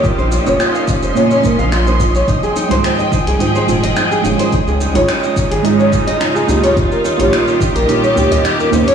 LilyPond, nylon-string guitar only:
\new Staff \with { instrumentName = "Nylon-string guitar" } { \time 4/4 \key f \minor \tempo 4 = 107 f'16 c''16 f'16 des''16 f'16 f''16 f'16 c''16 f'16 des''16 bes'16 f''16 f'16 c''16 f'16 des''16 | ees'16 aes'16 ees'16 c''16 ees'16 ees''16 ees'16 aes'16 ees'16 c''16 f'16 ees''16 ees'16 aes'16 ees'16 c''16 | ees'16 aes'16 ees'16 des''16 ees'16 ees''16 ees'16 aes'16 ees'16 des''16 f'16 ees''16 ees'16 aes'16 ees'16 des''16 | ees'16 bes'16 ees'16 des''16 ees'16 ees''16 ees'16 bes'16 ees'16 des''16 g'16 ees''16 ees'16 bes'16 ees'16 des''16 | }